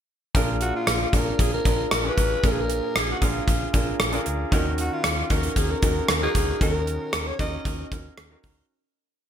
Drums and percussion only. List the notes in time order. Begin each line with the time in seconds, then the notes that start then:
0.35 kick, closed hi-hat
0.61 closed hi-hat
0.87 cross-stick, closed hi-hat
1.13 kick, closed hi-hat
1.39 kick, closed hi-hat
1.65 kick, closed hi-hat
1.91 cross-stick, closed hi-hat
2.18 kick, closed hi-hat
2.43 kick, closed hi-hat
2.70 closed hi-hat
2.96 cross-stick, closed hi-hat
3.22 kick, closed hi-hat
3.48 kick, closed hi-hat
3.74 kick, closed hi-hat
4.00 cross-stick, closed hi-hat
4.13 closed hi-hat
4.26 closed hi-hat
4.52 kick, closed hi-hat
4.78 closed hi-hat
5.04 cross-stick, closed hi-hat
5.30 kick, closed hi-hat
5.43 closed hi-hat
5.56 kick, closed hi-hat
5.82 kick, closed hi-hat
6.08 cross-stick, closed hi-hat
6.35 kick, closed hi-hat
6.61 kick, closed hi-hat
6.87 closed hi-hat
7.13 cross-stick, closed hi-hat
7.39 kick, closed hi-hat
7.65 kick, closed hi-hat
7.92 kick, closed hi-hat
8.18 cross-stick, closed hi-hat
8.43 kick, open hi-hat